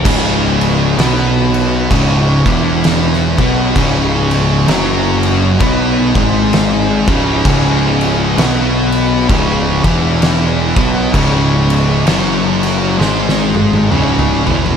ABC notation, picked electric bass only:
X:1
M:4/4
L:1/8
Q:"Swing" 1/4=65
K:C#m
V:1 name="Picked electric bass" clef=bass
C,,,2 B,,,2 C,,, E,,,2 B,,, | C,,,2 F,,,2 B,,, G,,,2 C,,, | C,,,2 B,,,2 C,,, E,,,2 B,,, | C,,,2 F,,,2 G,,,2 C,,, E,,, |]